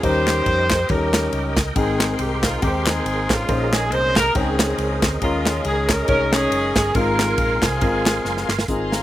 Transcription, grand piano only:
0.03 D#3 G3 C#4 D#4 A#4
0.89 G3 C#4 D#4 A4
0.95 A#4
1.75 G#2 G#3 C4 A#4 G5
2.62 G#3 C4 A#4 G5
2.68 C5
3.49 A#2 G#3 C#4 D#4 C5
4.35 C#3 G#3 D#4 G5
5.22 D#3 G#3 C#4 D#4 A#4
6.08 G#3 C#4 D#4 C#5
6.95 G#2 G#3 C4 F4 G#4
7.01 A#4
7.82 G#3 C4 F4 A#4
8.69 G#2 G#3 C4 F4 A#4

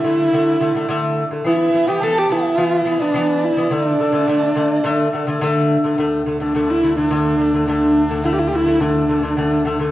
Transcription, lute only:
0.04 D3 A3
0.33 D3 A3
0.61 D3 A3
0.75 D3 A3
0.89 D3 A3
1.31 D3 A3
1.44 E3 B3
1.73 E3 B3
1.87 E3 B3
2.01 E3 B3
2.30 E3 B3
2.57 E3 B3
2.85 E3 B3
3.00 E3 B3
3.14 E3 B3
3.57 E3 B3
3.70 D3 A3
3.99 D3 A3
4.12 D3 A3
4.27 D3 A3
4.55 D3 A3
4.84 D3 A3
5.13 D3 A3
5.27 D3 A3
5.42 D3 A3
5.84 D3 A3
5.98 D3 A3
6.26 D3 A3
6.40 D3 A3
6.54 D3 A3
6.83 D3 A3
6.97 D3 A3
7.11 D3 A3
7.39 D3 A3
7.54 D3 A3
7.68 D3 A3
8.09 D3 A3
8.24 D3 A3
8.52 D3 A3
8.66 D3 A3
8.80 D3 A3
9.09 D3 A3
9.23 D3 A3
9.37 D3 A3
9.65 D3 A3
9.79 D3 A3

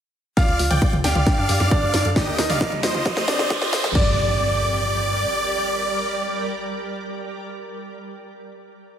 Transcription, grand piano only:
0.37 F4 F5
1.04 G4 G5
1.71 D4 D5
2.38 D#4 D#5
3.28 D4 D5
3.95 D5

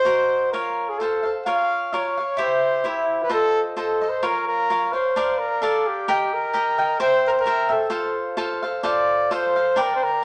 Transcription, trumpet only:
Already playing: C5
0.52 A#4
0.89 G#4
0.99 A4
1.46 F5
1.94 C#5
2.41 C5
2.88 E4
3.22 B4
3.34 A4
3.79 A4
4.09 C5
4.26 A#4
4.47 A#4
4.93 C5
5.39 A#4
5.62 A4
5.87 G4
6.34 A#4
7.00 C5
7.27 A#4 C5
7.40 A#4
7.72 A4
8.84 D5
9.32 C5
9.81 A#4
9.96 C5
10.03 A#4

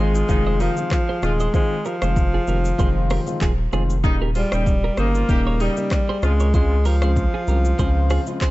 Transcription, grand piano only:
Already playing: D#3 G#3 C4 F4
0.28 D#3 G#3 C4 F4
0.77 D#3 G#3 C4 F4
1.22 D#3 G#3 C4 F4
1.53 D#3 G#3 C4 F4
2.02 D#3 G#3 C4 F4
2.47 D#3 G#3 C4 F4
2.78 D#3 G#3 C4 F4
3.27 D#3 G#3 C4 F4
3.72 D#3 G#3 C4 F4
4.03 C#3 G3 A#3 D#4
4.52 C#3 G3 A#3 D#4
4.97 C#3 G3 A#3 D#4
5.29 C#3 G3 A#3 D#4
5.77 C#3 G3 A#3 D#4
6.22 C#3 G#3 C4 F4
6.53 C#3 G#3 C4 F4
7.02 C#3 G#3 C4 F4
7.47 C#3 G#3 C4 F4
7.78 C#3 G#3 C4 F4
8.27 C#3 G#3 C4 F4

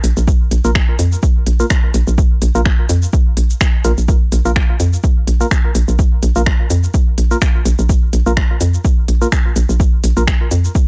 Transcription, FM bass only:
0.04 A#1
0.17 A#1
0.51 A#1
0.65 A#1
0.99 F2
1.47 A#1
1.94 A#1
2.07 A#1
2.42 A#1
2.55 A#1
2.89 F2
3.37 A#1
3.85 A#1
3.98 A#1
4.32 A#1
4.45 A#1
4.80 F2
5.27 A#1
5.75 A#1
5.88 A#1
6.23 A#1
6.36 A#1
6.70 F2
7.18 A#1
7.65 A#1
7.79 A#1
8.13 A#1
8.26 A#1
8.61 F2
9.08 A#1
9.56 A#1
9.69 A#1
10.04 A#1
10.17 A#1
10.51 F2

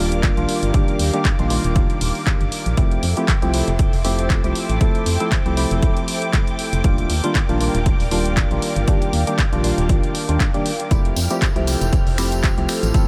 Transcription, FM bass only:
Already playing: D#1
0.37 A#1
0.63 G1
1.00 D#2
1.39 A#1
1.64 D#1
2.01 D#1
2.41 G1
2.66 A#1
2.77 F1
3.03 F2
3.42 C2
3.68 F1
3.93 F1
4.44 C2
4.69 A1
5.06 F2
5.46 C2
5.71 F1
6.73 F1
7.10 D#2
7.49 A#1
7.75 D#1
8.00 D#1
8.51 A#1
8.76 G1
9.13 D#2
9.53 A#1
9.78 D#1
9.89 A#1
10.29 D#2
10.91 F1
11.16 F2
11.56 C2
11.81 F1
12.07 F1
12.57 C2
12.83 A1

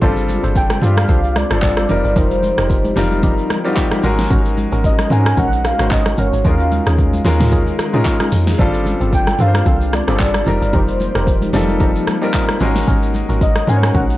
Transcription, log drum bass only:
0.02 G1
0.44 G1
0.82 G2
1.09 C2
1.51 G1
1.63 G1
1.90 F1
2.04 G1
2.16 F1
2.58 F1
2.97 F1
4.04 G#1
4.31 G#1
4.72 G#1
5.11 G#2
5.37 A#1
5.79 G#1
5.91 G#1
6.18 G1
6.33 G#1
6.45 D#2
6.87 D#2
7.25 D#2
8.32 F2
8.59 G1
9.01 G1
9.40 G2
9.66 C2
10.08 G1
10.20 G1
10.47 F1
10.61 G1
10.73 F1
11.15 F1
11.54 F1
12.61 G#1
12.88 G#1
13.29 G#1
13.68 G#2
13.95 A#1

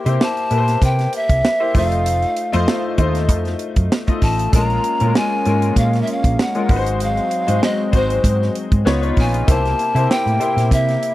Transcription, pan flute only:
0.23 A5
0.85 G5
1.16 E5
1.77 F5
4.23 A5
4.55 A#5
5.17 G#5
5.78 F5
6.02 E5
6.12 F5
6.41 F#5
7.03 F5
7.64 D#5
7.96 C5
9.20 G#5
9.50 A5
10.11 G5
10.73 E5

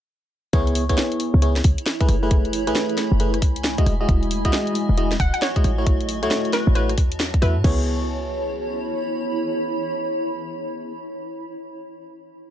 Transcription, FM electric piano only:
0.53 B3 E4 G#4 C#5
0.90 B3 E4 G#4 C#5
1.42 B3 E4 G#4 C#5
2.01 A3 E4 G#4 B4
2.23 A3 E4 G#4 B4
2.67 A3 E4 G#4 B4
3.20 A3 E4 G#4 B4
3.78 G#3 E4 F#4 D#5
4.01 G#3 E4 F#4 D#5
4.45 G#3 E4 F#4 D#5
4.98 G#3 E4 F#4 D#5
5.56 G#3 E4 F#4 D#5
5.78 A3 E4 F#4 C#5
6.23 A3 E4 F#4 C#5
6.76 A3 E4 F#4 C#5
7.42 A3 E4 F#4 E5
7.64 B3 E4 G#4 C#5

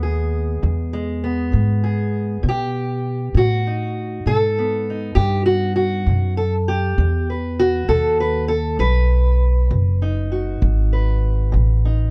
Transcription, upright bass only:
Already playing: D#2
0.63 E2
1.53 G#2
2.43 B2
3.35 A2
4.26 G#2
5.16 G2
6.06 F#2
6.98 E2
7.89 D#2
8.79 B1
9.71 F#1
10.62 G#1
11.54 A1

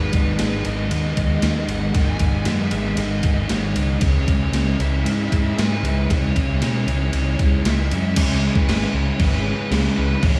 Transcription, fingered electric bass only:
Already playing: G#1
0.14 G#1
0.40 G#1
0.66 G#1
0.91 D#2
1.17 D#2
1.42 D#2
1.68 G#1
1.94 G#1
2.21 G#1
2.46 F#2
2.72 G#1
2.97 G#1
3.25 G#1
3.50 G#1
3.74 C#2
4.01 C#2
4.28 C#2
4.52 C#2
4.79 C#2
5.05 G#2
5.32 G#2
5.58 G#2
5.83 C#2
6.11 C#2
6.36 C#2
6.61 B2
6.86 C#2
7.13 C#2
7.39 C#2
7.64 C#2
7.91 F#2
8.17 C#2
8.68 G#1
8.93 C#2
9.19 G#1
9.71 C#2
9.98 C#2
10.24 A1

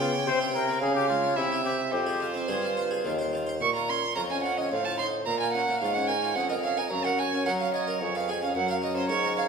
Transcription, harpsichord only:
Already playing: C#3
0.00 B3
0.14 C#4
0.27 C3
0.41 G4
0.54 E4
0.68 C4
0.82 C#3
0.97 F4
1.10 G#3
1.24 C#4
1.38 C3
1.52 G4
1.65 C4
1.93 F2
2.06 G#4
2.20 F4
2.34 C4
2.48 G2 G#4
2.62 F4
2.77 C5
2.91 G#4
3.04 D#2 F4
3.19 C5
3.33 F4
3.47 C5
3.61 A#2
3.75 F4
3.88 C#4
4.16 F2 F4
4.30 C#4
4.44 F4
4.58 C#4
4.72 A2
4.85 F4
4.99 D#4
5.27 A#2
5.41 F4
5.55 C#4
5.68 A#3
5.82 G#2 F4
5.96 C#4
6.09 A#4
6.22 F4
6.36 F2 C#4
6.50 A#4
6.63 C#4
6.77 A#4
6.91 F#2
7.04 A#4
7.18 F#4
7.32 C#4
7.46 F#3 A#4
7.61 F#4
7.74 C#5
7.88 A#4
8.01 F2
8.15 B4
8.29 G#4
8.42 C#4
8.55 F#2
8.68 A#4
8.82 F#4
8.96 C#4
9.09 G#2 A#4
9.23 F#4
9.37 C#5

